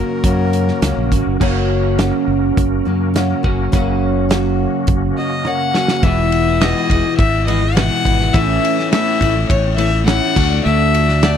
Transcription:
Already playing: F#2 C#3 F#3 A#3 C#4 F#4 A#4
0.00 F#3
0.24 F#2 C#3 F#3 A#3 C#4 F#4, kick, closed hi-hat
0.53 closed hi-hat
0.68 snare
0.82 C#2 F#3 A#3 C#4 F#4, snare, closed hi-hat
0.97 A#1
1.11 G#1 F#3 A#3 C#4 F#4, kick, closed hi-hat
1.27 F#1
1.40 F#1 F#2 C#3 F#3 A#3 C#4 F#4 A#4, kick, crash
1.98 F#3 A#3 C#4 F#4, snare, closed hi-hat
2.28 F#1
2.57 F#1, kick, closed hi-hat
2.85 F#2 F#3 A#3 C#4 F#4
3.14 F#3 A#3 C#4 F#4, snare, closed hi-hat
3.44 F#1 F#2 C#3 F#3 A#3 C#4 F#4, kick
3.72 F#1 F#2 C#3 F#3 A#3 C#4 F#4, kick, closed hi-hat
4.29 F#3 A#3 C#4 F#4, snare, closed hi-hat
4.87 F#1, kick, closed hi-hat
5.18 F#3 A#3 C#4 F#4 D#5
5.45 F#3 A#3 C#4 F#4 F#5, high tom
5.74 F#2 C#3 F#3 A#3 C#4 F#4, snare
5.88 snare
6.03 E1 E2 B2 E3 G#3 B3 E5, kick, ride
6.07 E4
6.32 ride
6.48 E3 G#3 B3 E4
6.61 E2 B2 E3 G#3 B3 E4 D#5, snare, ride
6.90 E1 E3 G#3 B3 E4, kick, ride
7.06 muted clean electric guitar stroke
7.17 G#1 E5, kick, ride
7.46 E3 G#3 B3 E4 D#5, ride
7.64 muted clean electric guitar stroke
7.75 E2 B2 E3 G#3 B3 E4 F#5, snare, ride
8.05 G#1 E3 G#3 B3 E4, kick, ride
8.20 E3 G#3 B3 E4, snare
8.34 A1 A2 E3 A3 C#4 E4 E5, kick, ride
8.65 ride
8.77 A3 C#4 E4, snare
8.92 A2 E3 A3 C#4 E4 E5, snare, ride
9.20 A1 E3 A3 C#4 E4, kick, ride
9.35 muted clean electric guitar stroke
9.49 A1 C#5, kick, ride
9.76 E3 A3 C#4 E5, ride
9.80 E4
9.91 muted clean electric guitar stroke
10.05 A2 E3 A3 C#4 E4 F#5, snare, ride
10.34 D2 D3 A3 D4 F#4, kick, crash
10.49 A3 D4 F#4
10.63 D2 D3 A3 D4 F#4 E5
10.94 ride
11.06 A3 D4 F#4, snare
11.22 D3 A3 D4 F#4 D5, snare, ride

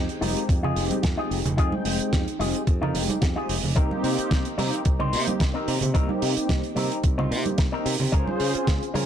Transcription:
0.09 closed hi-hat
0.21 F1 G#3 C4 D#4 F4 G4 A#4, open hi-hat, high conga
0.37 closed hi-hat
0.49 F2, kick, closed hi-hat
0.63 D#4 F4 G#4, low conga
0.76 F1 G#3 C4 D#4 G4, open hi-hat
0.91 muted fingered electric bass stroke, closed hi-hat, high conga
1.03 F2, muted clean electric guitar stroke, kick, snare, closed hi-hat
1.17 G#3 C4 D#4 F4 G4 G#4
1.31 F1, open hi-hat
1.45 F1, closed hi-hat, low conga
1.57 F2 G#3 C4 D#4 F4 G#4 G5, kick, closed hi-hat
1.72 high conga
1.85 F1, muted clean electric guitar stroke, open hi-hat
1.99 G#3 C4 D#4 G4, muted fingered electric bass stroke, closed hi-hat
2.13 F2, kick, snare, closed hi-hat
2.28 closed hi-hat
2.39 F1 G#3 C4 D#4 F4 G4 G#4, open hi-hat, high conga
2.55 closed hi-hat
2.67 F2, kick, closed hi-hat
2.81 D#4 F4 A#4, low conga
2.94 F1 G#3 C4 D#4 G4, open hi-hat
3.09 muted fingered electric bass stroke, closed hi-hat, high conga
3.21 F2, muted clean electric guitar stroke, kick, snare, closed hi-hat
3.36 G#3 C4 D#4 F4 G4 G#4
3.49 F1, open hi-hat
3.64 F1, open hi-hat, low conga
3.75 C2 A#3 C4 D#4 G4 A#4, kick, closed hi-hat
3.91 high conga
4.03 C3, muted clean electric guitar stroke, open hi-hat
4.18 A#3 C4 D#4 G4, muted fingered electric bass stroke, closed hi-hat
4.31 C2, kick, snare, closed hi-hat
4.45 closed hi-hat
4.58 C3 A#3 C4 D#4 G4 A#4, open hi-hat, high conga
4.73 closed hi-hat
4.85 C2, kick, closed hi-hat
4.99 C4 D#4 C5, low conga
5.12 C3 A#3 C4 D#4 G4, open hi-hat
5.27 muted fingered electric bass stroke, closed hi-hat, high conga
5.39 C2, muted clean electric guitar stroke, kick, snare, closed hi-hat
5.54 A#3 C4 D#4 G4 A#4
5.68 C3, open hi-hat
5.81 C3, closed hi-hat, low conga
5.94 C2 A#3 C4 D#4 G4 A#4, kick, closed hi-hat
6.09 high conga
6.21 C3, muted clean electric guitar stroke, open hi-hat
6.36 A#3 C4 D#4 G4, muted fingered electric bass stroke, closed hi-hat
6.49 C2, kick, snare, closed hi-hat
6.64 closed hi-hat
6.76 C3 A#3 C4 D#4 G4 A#4, open hi-hat, high conga
6.92 closed hi-hat
7.04 C2, kick, closed hi-hat
7.18 C4 D#4 F4, low conga
7.30 C3 A#3 C4 D#4 G4, open hi-hat
7.46 muted fingered electric bass stroke, closed hi-hat, high conga
7.57 C2, muted clean electric guitar stroke, kick, snare, closed hi-hat
7.72 A#3 C4 D#4 G4 A#4
7.86 C3, open hi-hat
8.00 C3, open hi-hat, low conga
8.12 C#2 C#4 F4 G#4 A#4 C5, kick, closed hi-hat
8.27 high conga
8.39 C#3, muted clean electric guitar stroke, open hi-hat
8.54 C4 C#4 F4 G#4, muted fingered electric bass stroke, closed hi-hat
8.67 C#2, kick, snare, closed hi-hat
8.83 closed hi-hat
8.94 C#3 C4 C#4 F4 G#4 A#4, open hi-hat, high conga

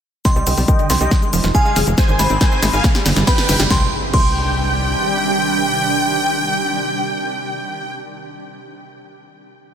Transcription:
0.25 C3 D#5 G5 C6, kick, snare, closed hi-hat, riser, shaker
0.36 C2 G3, shaker
0.47 C2 D3, open hi-hat, shaker
0.57 C2 G3, open hi-hat, shaker
0.68 D#3 D#5 G5, kick, closed hi-hat, shaker
0.79 D3, closed hi-hat, shaker
0.90 C2 C3 C6, snare, open hi-hat, shaker
1.01 C2 G3 D#5 G5, closed hi-hat, shaker
1.11 D#3 G#3 D#4 G#4, kick, snare, closed hi-hat, shaker
1.22 G#3, closed hi-hat, shaker
1.33 F1 F3, open hi-hat, shaker
1.44 F1 D#3, snare, closed hi-hat, shaker
1.55 C3 G#4 F5 G#5, kick, closed hi-hat, shaker
1.65 G#3, shaker
1.76 F1 D#3, snare, open hi-hat, shaker
1.87 F1 G#3, closed hi-hat, shaker
1.98 C3 G#3 C5 G#5, kick, snare, closed hi-hat, shaker
2.09 G#1 D#3, shaker
2.19 G#1 C3 B5, snare, open hi-hat, shaker
2.30 G#1 C4, closed hi-hat, shaker
2.41 D#3 C5 G#5, kick, snare, closed hi-hat, shaker
2.52 C4, closed hi-hat, shaker
2.63 G#1 G#3, snare, open hi-hat, shaker
2.73 G#1 D#3 F5 G#5, closed hi-hat, shaker
2.84 C3, kick, snare, closed hi-hat, shaker
2.95 G3, snare, closed hi-hat, shaker
3.06 G1 D3, snare, open hi-hat, shaker
3.16 G1 G3, snare, closed hi-hat, shaker
3.27 F3 B4 G5 B5, kick, snare, closed hi-hat, shaker
3.38 D3, snare, shaker
3.49 G1 C3, snare, open hi-hat, shaker
3.60 G1 G3, snare, shaker
3.70 C2 C3 D#3 G3 D4 G4 G5 C6, kick, snare, impact
4.14 C2 C3 G5 C6, kick, crash

